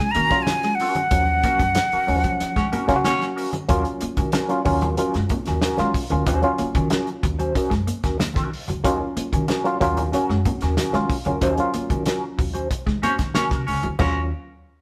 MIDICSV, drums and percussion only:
0, 0, Header, 1, 2, 480
1, 0, Start_track
1, 0, Key_signature, -6, "minor"
1, 0, Tempo, 644468
1, 827, Time_signature, 4, 2, 24, 8
1, 11034, End_track
2, 0, Start_track
2, 0, Title_t, "Drums"
2, 108, Note_on_c, 9, 42, 73
2, 182, Note_off_c, 9, 42, 0
2, 227, Note_on_c, 9, 42, 44
2, 229, Note_on_c, 9, 36, 86
2, 235, Note_on_c, 9, 38, 36
2, 302, Note_off_c, 9, 42, 0
2, 304, Note_off_c, 9, 36, 0
2, 310, Note_off_c, 9, 38, 0
2, 348, Note_on_c, 9, 38, 114
2, 348, Note_on_c, 9, 63, 76
2, 352, Note_on_c, 9, 42, 95
2, 423, Note_off_c, 9, 38, 0
2, 423, Note_off_c, 9, 63, 0
2, 427, Note_off_c, 9, 42, 0
2, 468, Note_on_c, 9, 38, 37
2, 470, Note_on_c, 9, 42, 38
2, 543, Note_off_c, 9, 38, 0
2, 545, Note_off_c, 9, 42, 0
2, 592, Note_on_c, 9, 46, 64
2, 667, Note_off_c, 9, 46, 0
2, 705, Note_on_c, 9, 42, 46
2, 710, Note_on_c, 9, 63, 77
2, 780, Note_off_c, 9, 42, 0
2, 784, Note_off_c, 9, 63, 0
2, 826, Note_on_c, 9, 42, 99
2, 828, Note_on_c, 9, 36, 116
2, 900, Note_off_c, 9, 42, 0
2, 903, Note_off_c, 9, 36, 0
2, 1068, Note_on_c, 9, 42, 78
2, 1070, Note_on_c, 9, 36, 98
2, 1074, Note_on_c, 9, 62, 51
2, 1142, Note_off_c, 9, 42, 0
2, 1145, Note_off_c, 9, 36, 0
2, 1148, Note_off_c, 9, 62, 0
2, 1188, Note_on_c, 9, 36, 88
2, 1190, Note_on_c, 9, 42, 48
2, 1262, Note_off_c, 9, 36, 0
2, 1264, Note_off_c, 9, 42, 0
2, 1301, Note_on_c, 9, 42, 89
2, 1305, Note_on_c, 9, 63, 75
2, 1311, Note_on_c, 9, 38, 97
2, 1375, Note_off_c, 9, 42, 0
2, 1379, Note_off_c, 9, 63, 0
2, 1386, Note_off_c, 9, 38, 0
2, 1430, Note_on_c, 9, 42, 36
2, 1504, Note_off_c, 9, 42, 0
2, 1549, Note_on_c, 9, 46, 53
2, 1624, Note_off_c, 9, 46, 0
2, 1665, Note_on_c, 9, 42, 49
2, 1670, Note_on_c, 9, 36, 77
2, 1740, Note_off_c, 9, 42, 0
2, 1745, Note_off_c, 9, 36, 0
2, 1787, Note_on_c, 9, 38, 35
2, 1791, Note_on_c, 9, 42, 78
2, 1796, Note_on_c, 9, 62, 48
2, 1861, Note_off_c, 9, 38, 0
2, 1865, Note_off_c, 9, 42, 0
2, 1870, Note_off_c, 9, 62, 0
2, 1909, Note_on_c, 9, 36, 86
2, 1910, Note_on_c, 9, 42, 35
2, 1914, Note_on_c, 9, 38, 37
2, 1983, Note_off_c, 9, 36, 0
2, 1984, Note_off_c, 9, 42, 0
2, 1988, Note_off_c, 9, 38, 0
2, 2030, Note_on_c, 9, 42, 62
2, 2033, Note_on_c, 9, 62, 33
2, 2033, Note_on_c, 9, 64, 71
2, 2105, Note_off_c, 9, 42, 0
2, 2107, Note_off_c, 9, 62, 0
2, 2107, Note_off_c, 9, 64, 0
2, 2149, Note_on_c, 9, 42, 52
2, 2150, Note_on_c, 9, 36, 73
2, 2157, Note_on_c, 9, 38, 31
2, 2223, Note_off_c, 9, 42, 0
2, 2225, Note_off_c, 9, 36, 0
2, 2231, Note_off_c, 9, 38, 0
2, 2268, Note_on_c, 9, 38, 117
2, 2268, Note_on_c, 9, 63, 74
2, 2272, Note_on_c, 9, 42, 86
2, 2342, Note_off_c, 9, 38, 0
2, 2343, Note_off_c, 9, 63, 0
2, 2346, Note_off_c, 9, 42, 0
2, 2394, Note_on_c, 9, 38, 37
2, 2395, Note_on_c, 9, 42, 35
2, 2468, Note_off_c, 9, 38, 0
2, 2470, Note_off_c, 9, 42, 0
2, 2515, Note_on_c, 9, 46, 69
2, 2589, Note_off_c, 9, 46, 0
2, 2627, Note_on_c, 9, 63, 81
2, 2628, Note_on_c, 9, 42, 53
2, 2702, Note_off_c, 9, 63, 0
2, 2703, Note_off_c, 9, 42, 0
2, 2746, Note_on_c, 9, 42, 88
2, 2749, Note_on_c, 9, 36, 124
2, 2821, Note_off_c, 9, 42, 0
2, 2824, Note_off_c, 9, 36, 0
2, 2866, Note_on_c, 9, 42, 37
2, 2940, Note_off_c, 9, 42, 0
2, 2984, Note_on_c, 9, 42, 76
2, 2988, Note_on_c, 9, 62, 50
2, 3058, Note_off_c, 9, 42, 0
2, 3063, Note_off_c, 9, 62, 0
2, 3105, Note_on_c, 9, 42, 56
2, 3107, Note_on_c, 9, 36, 100
2, 3179, Note_off_c, 9, 42, 0
2, 3181, Note_off_c, 9, 36, 0
2, 3219, Note_on_c, 9, 42, 92
2, 3225, Note_on_c, 9, 63, 92
2, 3229, Note_on_c, 9, 38, 101
2, 3293, Note_off_c, 9, 42, 0
2, 3300, Note_off_c, 9, 63, 0
2, 3304, Note_off_c, 9, 38, 0
2, 3346, Note_on_c, 9, 42, 35
2, 3420, Note_off_c, 9, 42, 0
2, 3465, Note_on_c, 9, 46, 62
2, 3468, Note_on_c, 9, 36, 105
2, 3540, Note_off_c, 9, 46, 0
2, 3542, Note_off_c, 9, 36, 0
2, 3584, Note_on_c, 9, 42, 46
2, 3589, Note_on_c, 9, 64, 83
2, 3659, Note_off_c, 9, 42, 0
2, 3664, Note_off_c, 9, 64, 0
2, 3704, Note_on_c, 9, 42, 77
2, 3715, Note_on_c, 9, 62, 53
2, 3779, Note_off_c, 9, 42, 0
2, 3789, Note_off_c, 9, 62, 0
2, 3828, Note_on_c, 9, 42, 38
2, 3833, Note_on_c, 9, 38, 39
2, 3903, Note_off_c, 9, 42, 0
2, 3907, Note_off_c, 9, 38, 0
2, 3943, Note_on_c, 9, 42, 64
2, 3948, Note_on_c, 9, 36, 87
2, 3953, Note_on_c, 9, 62, 36
2, 3953, Note_on_c, 9, 64, 78
2, 4017, Note_off_c, 9, 42, 0
2, 4022, Note_off_c, 9, 36, 0
2, 4027, Note_off_c, 9, 62, 0
2, 4027, Note_off_c, 9, 64, 0
2, 4063, Note_on_c, 9, 42, 50
2, 4071, Note_on_c, 9, 38, 35
2, 4137, Note_off_c, 9, 42, 0
2, 4145, Note_off_c, 9, 38, 0
2, 4182, Note_on_c, 9, 38, 120
2, 4186, Note_on_c, 9, 42, 84
2, 4186, Note_on_c, 9, 63, 78
2, 4257, Note_off_c, 9, 38, 0
2, 4260, Note_off_c, 9, 63, 0
2, 4261, Note_off_c, 9, 42, 0
2, 4297, Note_on_c, 9, 63, 60
2, 4306, Note_on_c, 9, 38, 38
2, 4307, Note_on_c, 9, 42, 41
2, 4372, Note_off_c, 9, 63, 0
2, 4380, Note_off_c, 9, 38, 0
2, 4382, Note_off_c, 9, 42, 0
2, 4427, Note_on_c, 9, 36, 105
2, 4429, Note_on_c, 9, 46, 68
2, 4502, Note_off_c, 9, 36, 0
2, 4504, Note_off_c, 9, 46, 0
2, 4543, Note_on_c, 9, 42, 48
2, 4544, Note_on_c, 9, 63, 81
2, 4618, Note_off_c, 9, 42, 0
2, 4619, Note_off_c, 9, 63, 0
2, 4666, Note_on_c, 9, 42, 104
2, 4667, Note_on_c, 9, 36, 126
2, 4740, Note_off_c, 9, 42, 0
2, 4742, Note_off_c, 9, 36, 0
2, 4786, Note_on_c, 9, 42, 36
2, 4860, Note_off_c, 9, 42, 0
2, 4903, Note_on_c, 9, 42, 74
2, 4908, Note_on_c, 9, 62, 51
2, 4978, Note_off_c, 9, 42, 0
2, 4983, Note_off_c, 9, 62, 0
2, 5026, Note_on_c, 9, 36, 95
2, 5026, Note_on_c, 9, 42, 51
2, 5100, Note_off_c, 9, 42, 0
2, 5101, Note_off_c, 9, 36, 0
2, 5140, Note_on_c, 9, 42, 86
2, 5142, Note_on_c, 9, 63, 84
2, 5150, Note_on_c, 9, 38, 115
2, 5214, Note_off_c, 9, 42, 0
2, 5217, Note_off_c, 9, 63, 0
2, 5224, Note_off_c, 9, 38, 0
2, 5266, Note_on_c, 9, 42, 32
2, 5341, Note_off_c, 9, 42, 0
2, 5387, Note_on_c, 9, 36, 112
2, 5387, Note_on_c, 9, 42, 78
2, 5462, Note_off_c, 9, 36, 0
2, 5462, Note_off_c, 9, 42, 0
2, 5508, Note_on_c, 9, 42, 52
2, 5582, Note_off_c, 9, 42, 0
2, 5626, Note_on_c, 9, 36, 100
2, 5628, Note_on_c, 9, 42, 76
2, 5629, Note_on_c, 9, 62, 47
2, 5701, Note_off_c, 9, 36, 0
2, 5703, Note_off_c, 9, 42, 0
2, 5704, Note_off_c, 9, 62, 0
2, 5744, Note_on_c, 9, 42, 35
2, 5745, Note_on_c, 9, 36, 85
2, 5749, Note_on_c, 9, 38, 35
2, 5819, Note_off_c, 9, 42, 0
2, 5820, Note_off_c, 9, 36, 0
2, 5823, Note_off_c, 9, 38, 0
2, 5866, Note_on_c, 9, 42, 68
2, 5866, Note_on_c, 9, 62, 31
2, 5940, Note_off_c, 9, 42, 0
2, 5941, Note_off_c, 9, 62, 0
2, 5985, Note_on_c, 9, 42, 46
2, 5987, Note_on_c, 9, 36, 92
2, 5993, Note_on_c, 9, 38, 36
2, 6060, Note_off_c, 9, 42, 0
2, 6061, Note_off_c, 9, 36, 0
2, 6068, Note_off_c, 9, 38, 0
2, 6103, Note_on_c, 9, 63, 86
2, 6107, Note_on_c, 9, 38, 123
2, 6111, Note_on_c, 9, 42, 96
2, 6178, Note_off_c, 9, 63, 0
2, 6182, Note_off_c, 9, 38, 0
2, 6186, Note_off_c, 9, 42, 0
2, 6212, Note_on_c, 9, 63, 60
2, 6227, Note_on_c, 9, 36, 98
2, 6231, Note_on_c, 9, 38, 37
2, 6232, Note_on_c, 9, 42, 39
2, 6286, Note_off_c, 9, 63, 0
2, 6302, Note_off_c, 9, 36, 0
2, 6305, Note_off_c, 9, 38, 0
2, 6307, Note_off_c, 9, 42, 0
2, 6356, Note_on_c, 9, 46, 71
2, 6431, Note_off_c, 9, 46, 0
2, 6464, Note_on_c, 9, 63, 78
2, 6468, Note_on_c, 9, 42, 49
2, 6539, Note_off_c, 9, 63, 0
2, 6543, Note_off_c, 9, 42, 0
2, 6588, Note_on_c, 9, 36, 111
2, 6589, Note_on_c, 9, 42, 103
2, 6662, Note_off_c, 9, 36, 0
2, 6663, Note_off_c, 9, 42, 0
2, 6828, Note_on_c, 9, 42, 81
2, 6828, Note_on_c, 9, 62, 42
2, 6902, Note_off_c, 9, 42, 0
2, 6903, Note_off_c, 9, 62, 0
2, 6947, Note_on_c, 9, 36, 87
2, 6950, Note_on_c, 9, 42, 55
2, 7021, Note_off_c, 9, 36, 0
2, 7024, Note_off_c, 9, 42, 0
2, 7062, Note_on_c, 9, 63, 82
2, 7063, Note_on_c, 9, 42, 77
2, 7073, Note_on_c, 9, 38, 95
2, 7137, Note_off_c, 9, 42, 0
2, 7137, Note_off_c, 9, 63, 0
2, 7147, Note_off_c, 9, 38, 0
2, 7189, Note_on_c, 9, 42, 36
2, 7264, Note_off_c, 9, 42, 0
2, 7307, Note_on_c, 9, 36, 105
2, 7310, Note_on_c, 9, 42, 78
2, 7382, Note_off_c, 9, 36, 0
2, 7384, Note_off_c, 9, 42, 0
2, 7426, Note_on_c, 9, 42, 49
2, 7428, Note_on_c, 9, 64, 79
2, 7501, Note_off_c, 9, 42, 0
2, 7502, Note_off_c, 9, 64, 0
2, 7546, Note_on_c, 9, 42, 80
2, 7553, Note_on_c, 9, 62, 52
2, 7621, Note_off_c, 9, 42, 0
2, 7627, Note_off_c, 9, 62, 0
2, 7668, Note_on_c, 9, 38, 35
2, 7743, Note_off_c, 9, 38, 0
2, 7786, Note_on_c, 9, 42, 67
2, 7787, Note_on_c, 9, 36, 97
2, 7787, Note_on_c, 9, 64, 77
2, 7860, Note_off_c, 9, 42, 0
2, 7861, Note_off_c, 9, 36, 0
2, 7862, Note_off_c, 9, 64, 0
2, 7900, Note_on_c, 9, 42, 50
2, 7908, Note_on_c, 9, 38, 34
2, 7975, Note_off_c, 9, 42, 0
2, 7983, Note_off_c, 9, 38, 0
2, 8022, Note_on_c, 9, 38, 124
2, 8026, Note_on_c, 9, 42, 99
2, 8028, Note_on_c, 9, 63, 74
2, 8096, Note_off_c, 9, 38, 0
2, 8100, Note_off_c, 9, 42, 0
2, 8102, Note_off_c, 9, 63, 0
2, 8133, Note_on_c, 9, 63, 59
2, 8145, Note_on_c, 9, 38, 38
2, 8146, Note_on_c, 9, 42, 36
2, 8208, Note_off_c, 9, 63, 0
2, 8219, Note_off_c, 9, 38, 0
2, 8221, Note_off_c, 9, 42, 0
2, 8264, Note_on_c, 9, 36, 99
2, 8266, Note_on_c, 9, 46, 61
2, 8339, Note_off_c, 9, 36, 0
2, 8340, Note_off_c, 9, 46, 0
2, 8379, Note_on_c, 9, 42, 55
2, 8388, Note_on_c, 9, 63, 78
2, 8453, Note_off_c, 9, 42, 0
2, 8462, Note_off_c, 9, 63, 0
2, 8501, Note_on_c, 9, 42, 89
2, 8503, Note_on_c, 9, 36, 104
2, 8576, Note_off_c, 9, 42, 0
2, 8578, Note_off_c, 9, 36, 0
2, 8621, Note_on_c, 9, 42, 40
2, 8695, Note_off_c, 9, 42, 0
2, 8741, Note_on_c, 9, 42, 74
2, 8746, Note_on_c, 9, 62, 50
2, 8816, Note_off_c, 9, 42, 0
2, 8821, Note_off_c, 9, 62, 0
2, 8863, Note_on_c, 9, 36, 88
2, 8865, Note_on_c, 9, 42, 50
2, 8938, Note_off_c, 9, 36, 0
2, 8940, Note_off_c, 9, 42, 0
2, 8979, Note_on_c, 9, 42, 86
2, 8983, Note_on_c, 9, 63, 74
2, 8989, Note_on_c, 9, 38, 93
2, 9053, Note_off_c, 9, 42, 0
2, 9058, Note_off_c, 9, 63, 0
2, 9064, Note_off_c, 9, 38, 0
2, 9225, Note_on_c, 9, 36, 112
2, 9226, Note_on_c, 9, 46, 58
2, 9300, Note_off_c, 9, 36, 0
2, 9300, Note_off_c, 9, 46, 0
2, 9344, Note_on_c, 9, 42, 48
2, 9418, Note_off_c, 9, 42, 0
2, 9464, Note_on_c, 9, 36, 88
2, 9464, Note_on_c, 9, 42, 73
2, 9470, Note_on_c, 9, 62, 50
2, 9538, Note_off_c, 9, 36, 0
2, 9538, Note_off_c, 9, 42, 0
2, 9545, Note_off_c, 9, 62, 0
2, 9584, Note_on_c, 9, 36, 87
2, 9589, Note_on_c, 9, 38, 34
2, 9658, Note_off_c, 9, 36, 0
2, 9663, Note_off_c, 9, 38, 0
2, 9705, Note_on_c, 9, 64, 68
2, 9707, Note_on_c, 9, 42, 72
2, 9780, Note_off_c, 9, 64, 0
2, 9781, Note_off_c, 9, 42, 0
2, 9821, Note_on_c, 9, 42, 50
2, 9824, Note_on_c, 9, 36, 84
2, 9829, Note_on_c, 9, 38, 33
2, 9896, Note_off_c, 9, 42, 0
2, 9899, Note_off_c, 9, 36, 0
2, 9904, Note_off_c, 9, 38, 0
2, 9940, Note_on_c, 9, 38, 115
2, 9941, Note_on_c, 9, 63, 73
2, 9944, Note_on_c, 9, 42, 83
2, 10015, Note_off_c, 9, 38, 0
2, 10016, Note_off_c, 9, 63, 0
2, 10019, Note_off_c, 9, 42, 0
2, 10050, Note_on_c, 9, 63, 54
2, 10063, Note_on_c, 9, 36, 106
2, 10064, Note_on_c, 9, 38, 38
2, 10066, Note_on_c, 9, 42, 35
2, 10125, Note_off_c, 9, 63, 0
2, 10138, Note_off_c, 9, 36, 0
2, 10139, Note_off_c, 9, 38, 0
2, 10140, Note_off_c, 9, 42, 0
2, 10187, Note_on_c, 9, 46, 66
2, 10261, Note_off_c, 9, 46, 0
2, 10300, Note_on_c, 9, 42, 51
2, 10301, Note_on_c, 9, 63, 84
2, 10375, Note_off_c, 9, 42, 0
2, 10375, Note_off_c, 9, 63, 0
2, 10419, Note_on_c, 9, 62, 91
2, 10424, Note_on_c, 9, 36, 101
2, 10424, Note_on_c, 9, 43, 96
2, 10424, Note_on_c, 9, 55, 82
2, 10494, Note_off_c, 9, 62, 0
2, 10498, Note_off_c, 9, 36, 0
2, 10499, Note_off_c, 9, 43, 0
2, 10499, Note_off_c, 9, 55, 0
2, 11034, End_track
0, 0, End_of_file